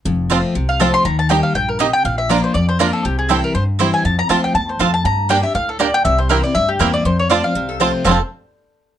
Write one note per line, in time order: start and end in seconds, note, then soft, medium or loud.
0.05 0.41 F1 loud
0.05 0.53 F2 medium
0.30 0.54 F3 medium
0.30 0.54 A3 medium
0.30 0.40 C4 medium
0.30 0.37 C4 medium
0.30 0.55 C4 medium
0.30 0.40 F4 medium
0.30 0.37 F4 medium
0.30 0.55 F4 medium
0.30 0.40 C5 medium
0.30 0.41 A5 medium
0.55 0.91 C2 medium
0.55 1.03 C3 medium
0.69 0.80 F5 loud
0.80 1.04 F3 medium
0.80 1.04 A3 medium
0.80 0.90 C4 medium
0.80 0.87 C4 medium
0.80 1.05 C4 loud
0.80 0.90 F4 medium
0.80 0.87 F4 medium
0.80 1.05 F4 medium
0.80 0.90 C5 loud
0.80 0.93 A5 medium
0.80 0.90 A5 medium
0.94 1.05 C6 loud
1.05 1.41 D#2 loud
1.05 1.53 D#3 loud
1.05 1.18 A#5 medium
1.19 1.30 A5 medium
1.29 1.54 G3 medium
1.29 1.39 A#3 medium
1.29 1.54 A#3 medium
1.29 1.36 A#3 medium
1.29 1.54 D#4 medium
1.29 1.36 D#4 medium
1.29 1.40 G4 medium
1.29 1.37 G4 medium
1.29 1.54 G4 medium
1.29 1.40 D#5 medium
1.29 1.43 G5 medium
1.29 1.40 G5 medium
1.43 1.54 F5 medium
1.54 1.90 A#1 medium
1.54 1.79 G2 medium
1.54 1.68 G5 medium
1.69 1.79 A#4 medium
1.79 2.04 C3 medium
1.79 1.89 A#3 medium
1.79 1.86 A#3 medium
1.79 1.86 D#4 medium
1.79 1.90 G4 medium
1.79 1.86 G4 medium
1.79 1.93 D#5 medium
1.79 1.90 D#5 loud
1.79 1.90 G5 loud
1.93 2.04 G5 loud
2.05 2.40 A#1 medium
2.05 2.53 A#2 loud
2.05 2.18 F5 medium
2.18 2.29 E5 medium
2.29 2.54 F3 medium
2.29 2.39 A#3 medium
2.29 2.54 A#3 medium
2.29 2.36 A#3 medium
2.29 2.54 D4 loud
2.29 2.36 D4 medium
2.29 2.40 F4 medium
2.29 2.36 F4 medium
2.29 2.54 F4 medium
2.29 2.43 D5 medium
2.29 2.40 D5 medium
2.29 2.40 A#5 loud
2.44 2.54 C5 medium
2.54 2.90 F2 medium
2.54 3.03 F2 medium
2.54 2.68 D5 medium
2.69 2.80 C5 medium
2.79 3.04 F3 medium
2.79 2.89 A#3 medium
2.79 3.04 A#3 medium
2.79 2.86 A#3 medium
2.79 2.86 D4 medium
2.79 3.04 D4 loud
2.79 2.90 F4 medium
2.79 2.86 F4 medium
2.79 3.04 F4 medium
2.79 2.93 A#4 medium
2.79 2.90 D5 loud
2.79 2.90 A#5 loud
2.93 3.04 A4 medium
3.05 3.40 C2 medium
3.05 3.53 C3 medium
3.05 3.18 G4 medium
3.19 3.30 G#4 medium
3.29 3.53 E3 medium
3.29 3.54 G3 medium
3.29 3.39 C4 medium
3.29 3.36 C4 medium
3.29 3.54 C4 medium
3.29 3.39 E4 medium
3.29 3.36 E4 medium
3.29 3.54 E4 medium
3.29 3.37 G4 medium
3.29 3.43 A4 medium
3.29 3.40 C5 loud
3.29 3.40 G5 medium
3.44 3.54 A#4 medium
3.55 3.91 G2 medium
3.55 4.03 G2 medium
3.55 3.63 C5 medium
3.79 4.03 E3 medium
3.79 4.04 G3 medium
3.79 3.89 C4 loud
3.79 4.04 C4 medium
3.79 3.86 C4 medium
3.79 3.90 E4 medium
3.79 4.04 E4 medium
3.79 3.86 E4 medium
3.79 3.87 G4 medium
3.79 3.90 C5 medium
3.79 3.90 G5 loud
3.94 4.05 G#5 medium
4.05 4.23 F2 loud
4.05 4.53 F2 medium
4.05 4.18 A5 medium
4.19 4.29 A#5 loud
4.29 4.51 D2 medium
4.29 4.53 F3 medium
4.29 4.54 A3 medium
4.29 4.39 C4 medium
4.29 4.54 C4 medium
4.29 4.36 C4 medium
4.29 4.40 F4 medium
4.29 4.54 F4 medium
4.29 4.37 F4 medium
4.29 4.40 C5 medium
4.29 4.43 A5 medium
4.29 4.40 A5 loud
4.44 4.54 G5 medium
4.54 4.76 E2 medium
4.54 4.79 E2 medium
4.54 4.68 A5 loud
4.69 4.80 C5 medium
4.79 5.01 F2 medium
4.79 5.04 F2 medium
4.79 4.90 C4 medium
4.79 4.86 C4 medium
4.79 4.90 F4 medium
4.79 4.87 F4 medium
4.79 4.90 C5 loud
4.79 4.93 F5 medium
4.79 4.90 A5 loud
4.94 5.05 A5 loud
5.05 5.41 G2 loud
5.05 5.53 G2 medium
5.05 5.29 A#5 loud
5.29 5.43 G3 medium
5.29 5.40 A#3 medium
5.29 5.43 A#3 medium
5.29 5.36 A#3 medium
5.29 5.43 D4 medium
5.29 5.36 D4 medium
5.29 5.40 G4 medium
5.29 5.41 G4 medium
5.29 5.37 G4 medium
5.29 5.40 D5 loud
5.29 5.43 G5 medium
5.29 5.40 G5 loud
5.43 5.55 D4 medium
5.43 5.54 G4 medium
5.43 5.55 E5 medium
5.55 5.91 D2 medium
5.55 5.79 A2 medium
5.55 5.68 F5 medium
5.69 5.79 A4 medium
5.79 6.04 A#2 medium
5.79 5.90 A#3 medium
5.79 5.86 A#3 medium
5.79 5.87 D4 medium
5.79 5.90 G4 medium
5.79 5.87 G4 medium
5.79 5.93 D5 medium
5.79 5.90 D5 medium
5.79 5.90 G5 medium
5.94 6.04 G5 loud
6.05 6.41 C2 loud
6.05 6.53 C3 loud
6.05 6.18 E5 medium
6.18 6.29 C5 medium
6.29 6.43 E3 medium
6.29 6.40 A#3 medium
6.29 6.43 A#3 medium
6.29 6.37 A#3 medium
6.29 6.44 C4 medium
6.29 6.40 E4 medium
6.29 6.37 E4 medium
6.29 6.42 E4 medium
6.29 6.37 G4 medium
6.29 6.43 A#4 medium
6.29 6.40 C5 medium
6.29 6.40 G5 medium
6.43 6.55 C4 soft
6.43 6.55 E4 medium
6.43 6.55 D5 medium
6.55 6.76 D2 medium
6.55 7.03 G2 medium
6.55 6.68 E5 loud
6.69 6.80 G4 medium
6.79 7.01 E2 medium
6.79 7.04 E3 medium
6.79 6.90 A#3 medium
6.79 7.04 A#3 medium
6.79 6.87 A#3 medium
6.79 7.05 C4 loud
6.79 6.90 E4 loud
6.79 6.87 E4 medium
6.79 7.05 E4 medium
6.79 6.87 G4 medium
6.79 6.93 A#4 medium
6.79 6.90 C5 loud
6.79 6.90 G5 loud
6.94 7.05 D5 loud
7.05 7.41 F2 loud
7.05 7.53 F2 medium
7.05 7.19 C5 medium
7.19 7.30 C#5 medium
7.30 7.43 F3 medium
7.30 7.43 A3 medium
7.30 7.40 C4 medium
7.30 7.44 C4 medium
7.30 7.37 C4 medium
7.30 7.40 F4 medium
7.30 7.42 F4 medium
7.30 7.37 F4 medium
7.30 7.40 C5 medium
7.30 7.44 D5 medium
7.30 7.40 A5 loud
7.43 7.55 C4 soft
7.43 7.54 F4 medium
7.43 7.78 F5 medium
7.55 7.91 C2 medium
7.55 8.03 C3 medium
7.69 7.80 A4 medium
7.80 8.04 F3 medium
7.80 8.04 A3 medium
7.80 7.90 C4 medium
7.80 7.87 C4 medium
7.80 8.05 C4 medium
7.80 7.90 F4 medium
7.80 7.87 F4 medium
7.80 8.05 F4 medium
7.80 8.03 C5 loud
7.80 7.90 C5 loud
7.80 7.91 A5 medium
8.04 8.18 F1 medium
8.04 8.16 F2 medium
8.04 8.16 C3 medium
8.04 8.16 F3 loud
8.04 8.18 A3 medium
8.04 8.16 A3 loud
8.04 8.16 C4 medium
8.04 8.17 C4 loud
8.04 8.19 C4 medium
8.04 8.16 F4 medium
8.04 8.17 F4 loud
8.04 8.18 C5 medium
8.04 8.17 C5 medium
8.04 8.18 F5 medium
8.04 8.17 A5 medium
8.09 8.20 F4 medium
8.09 8.21 A4 medium